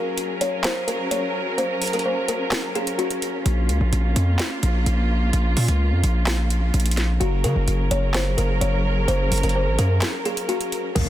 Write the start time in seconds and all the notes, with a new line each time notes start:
Already playing: F#3 C#4 G#4 A#4
0.18 closed hi-hat
0.41 C#5, closed hi-hat
0.64 C5, snare, clap, closed hi-hat
0.88 A#4, closed hi-hat
1.11 C#5, closed hi-hat
1.58 C5, closed hi-hat
1.82 closed hi-hat, open hi-hat
1.87 closed hi-hat
1.93 A#4, closed hi-hat
1.99 closed hi-hat
2.06 C5
2.28 A#4, closed hi-hat
2.51 snare, clap, closed hi-hat
2.75 G#4, closed hi-hat
2.87 closed hi-hat
2.98 F#4, closed hi-hat
3.11 closed hi-hat
3.22 closed hi-hat
3.46 A#1 A#3 F4, closed hi-hat
3.69 C#2, closed hi-hat
3.81 A#1
3.93 A#1, closed hi-hat
4.16 F2, closed hi-hat
4.39 snare, clap, closed hi-hat
4.63 A#1, closed hi-hat
4.86 A#1, closed hi-hat
5.33 A#1, closed hi-hat
5.57 A#2, closed hi-hat, open hi-hat
5.68 C#2, closed hi-hat
5.92 F2
6.04 A#1, closed hi-hat
6.26 snare, clap, closed hi-hat
6.50 closed hi-hat
6.74 A#1, closed hi-hat
6.80 closed hi-hat
6.86 closed hi-hat
6.91 closed hi-hat
6.97 snare, closed hi-hat
7.20 F#1 F#3 C#4 F#4 G#4 A#4, closed hi-hat
7.44 C#3 A#4, closed hi-hat
7.56 F#1
7.68 F#1, closed hi-hat
7.91 F#1 C#5, closed hi-hat
8.14 C5, snare, clap, closed hi-hat
8.37 F#1 A#4, closed hi-hat
8.61 F#1 C#5, closed hi-hat
9.08 F#1 C5, closed hi-hat
9.32 F#1, closed hi-hat, open hi-hat
9.38 closed hi-hat
9.43 F#1 A#4, closed hi-hat
9.49 closed hi-hat
9.56 C5
9.67 G#1
9.79 F#2 A#4, closed hi-hat
10.01 snare, clap, closed hi-hat
10.25 G#4, closed hi-hat
10.37 closed hi-hat
10.49 F#4, closed hi-hat
10.61 closed hi-hat
10.72 closed hi-hat
10.95 A#1 A#3 C#4 F4 A#4, closed hi-hat, crash, impact